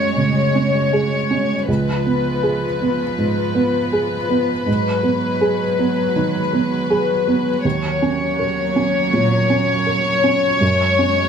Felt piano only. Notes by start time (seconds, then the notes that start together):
Already playing: F#2 C#4 G#4
0.17 C#3
0.55 C#4
0.93 G#4
1.31 C#4
1.68 C#2
2.06 B3
2.43 G#4
2.81 B3
3.18 G#2
3.55 B3
3.93 G#4
4.30 B3
4.66 G#2
5.03 B3
5.41 G#4
5.79 B3
6.16 D#3
6.53 B3
6.90 G#4
7.28 B3
7.65 D#2
8.02 C#4
8.39 A#4
8.76 C#4
9.13 A#2
9.50 C#4
9.86 A#4
10.24 C#4
10.61 F#2
10.99 C#4